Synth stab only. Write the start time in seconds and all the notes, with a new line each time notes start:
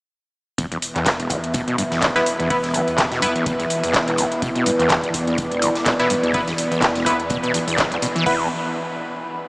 2.16 B3 E4 B4
2.50 B3 E4 B4
3.22 B3 E4 B4
5.99 B3 E4 B4
6.34 B3 E4 B4
7.06 B3 E4 B4
8.26 B3 E4 B4